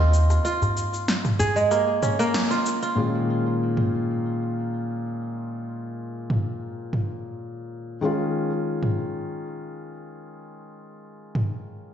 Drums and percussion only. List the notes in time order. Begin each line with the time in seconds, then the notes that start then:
0.14 cabasa
0.30 darbuka tek, cabasa
0.45 cabasa
0.62 darbuka dum, cabasa
0.77 darbuka ka, cabasa
0.94 cabasa
1.08 snare, cabasa
1.25 mid tom, darbuka ka, cabasa
1.40 darbuka dum, cabasa
1.56 darbuka tek, cabasa
1.71 darbuka tek, cabasa
2.02 mid tom, darbuka ka, darbuka tek, cabasa
2.20 cabasa
2.34 snare, cabasa
2.51 cabasa
2.66 cabasa
2.83 cabasa
3.77 mid tom
6.30 mid tom
6.93 mid tom
8.83 mid tom
11.35 mid tom